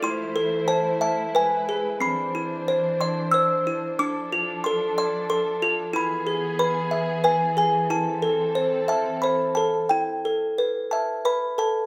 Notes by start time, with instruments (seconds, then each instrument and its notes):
Already playing: string section A3
0.03 string section E3 E4 C5, music box E4 C6
0.36 music box A4
0.68 music box C5 A5
1.01 music box E5 A5
1.34 string section G#3 B4, music box B4 G#5
1.69 music box G#4
2.00 string section E3 D4 C5, music box C4 B5
2.35 music box E4
2.68 music box C5
3.01 music box D5 C6
3.31 music box C5 E6
3.67 music box E4
3.98 string section F3 D4 A4, music box D4 D6
4.32 music box F4
4.64 music box A4 C6
4.98 music box D5 C6
5.30 music box A4 C6
5.62 music box F4
5.93 string section E3 B3 G#4, music box E4 B5
6.27 music box G#4
6.59 music box B4 B5
6.91 music box E5
7.24 music box B4 G#5
7.57 music box G#4 G#5
7.90 string section C4 A4, music box E4 A5
8.22 music box A4
8.55 music box C5
8.88 music box E5 A5
9.22 music box C5 B5
9.55 music box A4 A5
9.89 music box E4 G5
10.25 music box A4
10.58 music box B4
10.91 music box E5 A5
11.25 music box B4 B5
11.58 music box A4 A5